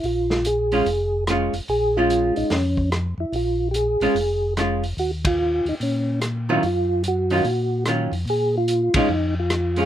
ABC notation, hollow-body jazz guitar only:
X:1
M:4/4
L:1/8
Q:"Swing" 1/4=146
K:Bbm
V:1 name="Hollow-body jazz guitar"
z3 [A,DF] z2 [A,DF] z | z [A,DF]3 z4 | z3 [A,DF] z2 [A,DF] z | z6 z [E,G,DF] |
z3 [E,G,DF] z2 [E,G,DF] z | z3 [A,DF] z3 [A,DF] |]